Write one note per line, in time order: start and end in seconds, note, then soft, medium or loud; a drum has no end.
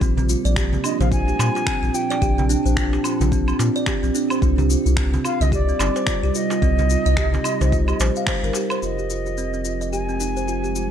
0.00 0.36 A#1 loud
0.00 4.42 A#2 medium
0.00 1.80 G3 medium
0.00 1.06 A#3 medium
0.00 0.16 C4 medium
0.00 1.64 F4 medium
0.00 kick loud
0.00 darbuka ka soft
0.00 cabasa soft
0.17 0.28 C4 medium
0.17 darbuka dum medium
0.17 cabasa soft
0.29 0.44 F4 medium
0.29 cabasa medium
0.45 0.77 A#1 loud
0.45 0.56 D5 medium
0.45 cabasa soft
0.53 4.42 F3 medium
0.53 0.72 G4 loud
0.53 finger snap medium
0.53 kick loud
0.57 cabasa soft
0.73 0.84 C4 medium
0.73 darbuka dum medium
0.73 cabasa soft
0.84 0.99 D4 medium
0.84 0.99 D#5 medium
0.84 darbuka ka soft
0.84 cabasa medium
0.84 low woodblock medium
1.00 1.32 A#1 medium
1.00 1.11 C5 medium
1.00 1.11 F5 medium
1.00 darbuka dum loud
1.00 cabasa soft
1.12 6.20 C4 medium
1.12 1.26 F4 medium
1.12 1.96 G#5 loud
1.12 kick loud
1.12 cabasa soft
1.28 1.39 G4 medium
1.28 cabasa soft
1.39 1.49 A#2 medium
1.39 1.54 F4 medium
1.39 darbuka tek medium
1.39 cabasa medium
1.39 low woodblock medium
1.55 1.66 F4 medium
1.55 darbuka ka medium
1.55 cabasa soft
1.67 1.81 C4 medium
1.67 finger snap medium
1.67 kick loud
1.67 cabasa soft
1.73 4.42 D4 medium
1.83 1.90 A#1 medium
1.83 1.93 C4 medium
1.83 cabasa soft
1.94 2.09 F4 medium
1.94 2.49 G5 medium
1.94 cabasa medium
2.10 2.21 D5 loud
2.10 darbuka tek medium
2.10 cabasa soft
2.22 2.56 A#1 loud
2.22 2.37 G4 loud
2.22 kick loud
2.22 darbuka ka soft
2.22 cabasa soft
2.38 2.49 C4 medium
2.38 darbuka dum medium
2.38 cabasa soft
2.49 2.65 D4 loud
2.49 cabasa medium
2.65 2.98 A#1 loud
2.65 2.76 C5 medium
2.65 cabasa soft
2.77 2.91 F4 medium
2.77 finger snap medium
2.77 kick loud
2.77 cabasa soft
2.93 3.04 G4 medium
2.93 darbuka tek medium
2.93 cabasa soft
3.04 3.20 F4 medium
3.04 darbuka ka soft
3.04 cabasa medium
3.04 low woodblock medium
3.20 3.53 A#1 medium
3.20 3.31 F4 medium
3.20 darbuka tek soft
3.20 darbuka dum medium
3.20 cabasa soft
3.32 3.46 C4 medium
3.32 kick loud
3.32 cabasa soft
3.48 3.59 C4 medium
3.48 cabasa soft
3.48 low woodblock medium
3.59 3.70 A#2 medium
3.59 3.74 F4 medium
3.59 darbuka tek medium
3.59 cabasa medium
3.76 3.86 D5 loud
3.76 cabasa soft
3.86 4.02 G4 loud
3.86 finger snap medium
3.86 kick loud
3.86 darbuka tek medium
3.86 cabasa soft
4.03 4.10 A#1 medium
4.03 4.14 C4 medium
4.03 darbuka ka soft
4.03 cabasa soft
4.15 4.30 D4 loud
4.15 cabasa medium
4.30 4.42 C5 medium
4.30 cabasa soft
4.30 low woodblock medium
4.42 4.76 C2 loud
4.42 8.83 C3 medium
4.42 4.57 F4 medium
4.42 kick medium
4.42 darbuka ka soft
4.42 cabasa soft
4.58 4.69 G4 medium
4.58 darbuka dum medium
4.58 cabasa soft
4.70 4.85 F4 medium
4.70 cabasa medium
4.86 5.18 C2 loud
4.86 4.96 F4 medium
4.86 cabasa soft
4.97 5.12 C4 medium
4.97 finger snap medium
4.97 kick loud
4.97 cabasa soft
5.11 8.83 G3 medium
5.11 5.24 C4 medium
5.11 darbuka dum medium
5.11 cabasa soft
5.25 5.39 F4 medium
5.25 5.43 F5 loud
5.25 darbuka ka soft
5.25 cabasa medium
5.25 low woodblock medium
5.41 5.73 C2 medium
5.41 5.51 D#5 loud
5.41 5.53 D#5 loud
5.41 darbuka dum medium
5.41 cabasa soft
5.52 5.68 G4 medium
5.52 6.38 D5 loud
5.52 kick loud
5.52 cabasa soft
5.69 5.79 C4 medium
5.69 cabasa soft
5.79 5.90 G1 medium
5.79 5.95 D#4 loud
5.79 darbuka tek medium
5.79 cabasa medium
5.79 low woodblock medium
5.96 6.07 C5 medium
5.96 darbuka ka medium
5.96 cabasa soft
6.07 6.22 F4 medium
6.07 finger snap medium
6.07 kick loud
6.07 cabasa soft
6.23 6.30 C2 medium
6.23 10.07 D#4 medium
6.23 6.34 G4 medium
6.23 cabasa soft
6.35 6.50 F4 medium
6.35 8.28 D#5 loud
6.35 cabasa medium
6.50 6.61 F4 medium
6.50 darbuka tek medium
6.50 cabasa soft
6.62 6.96 C2 loud
6.62 6.77 C4 medium
6.62 kick loud
6.62 darbuka ka soft
6.62 cabasa soft
6.79 6.89 C4 medium
6.79 darbuka dum medium
6.79 cabasa soft
6.90 7.05 F4 medium
6.90 cabasa medium
7.06 7.38 C2 loud
7.06 7.16 D#5 loud
7.06 cabasa soft
7.17 7.33 G4 medium
7.17 finger snap loud
7.17 kick loud
7.17 cabasa soft
7.34 7.45 C4 medium
7.34 darbuka tek medium
7.34 darbuka dum medium
7.34 cabasa soft
7.44 7.60 D#4 loud
7.44 darbuka ka soft
7.44 cabasa medium
7.44 low woodblock medium
7.61 7.93 C2 medium
7.61 7.72 C5 medium
7.61 darbuka tek soft
7.61 darbuka dum medium
7.61 cabasa soft
7.72 7.87 F4 medium
7.72 kick loud
7.72 cabasa soft
7.88 7.99 G4 medium
7.88 darbuka ka soft
7.88 cabasa soft
7.88 low woodblock medium
8.00 8.10 A#1 loud
8.00 8.16 C5 medium
8.00 darbuka tek medium
8.00 cabasa medium
8.16 8.23 F5 medium
8.16 cabasa soft
8.27 8.43 C5 loud
8.27 finger snap medium
8.27 kick loud
8.27 darbuka tek medium
8.27 cabasa soft
8.43 8.51 G1 medium
8.43 8.55 A#4 medium
8.43 darbuka ka soft
8.43 cabasa soft
8.53 8.71 G4 medium
8.53 darbuka tek medium
8.53 cabasa medium
8.70 8.82 C5 loud
8.70 cabasa soft
8.70 low woodblock medium
8.82 10.91 F1 medium
8.82 10.91 F3 medium
8.82 8.97 F4 medium
8.82 9.89 D#5 medium
8.82 cabasa soft
8.99 9.10 G4 medium
8.99 cabasa soft
9.10 9.25 F4 medium
9.10 cabasa medium
9.26 10.91 C4 medium
9.26 9.37 F4 medium
9.26 cabasa soft
9.38 9.52 C4 medium
9.38 cabasa soft
9.53 9.64 C4 medium
9.53 cabasa soft
9.59 10.91 G#3 medium
9.65 9.80 F4 medium
9.65 cabasa medium
9.81 9.91 D#5 medium
9.81 cabasa soft
9.92 10.08 G4 medium
9.92 10.91 G#5 medium
9.92 cabasa soft
10.09 10.20 C4 medium
10.09 cabasa soft
10.20 10.35 D#4 medium
10.20 cabasa medium
10.37 10.47 C5 medium
10.37 cabasa soft
10.43 10.91 G3 medium
10.48 10.62 F4 medium
10.48 cabasa soft
10.64 10.75 G4 medium
10.64 cabasa soft
10.76 10.90 F4 medium
10.76 cabasa medium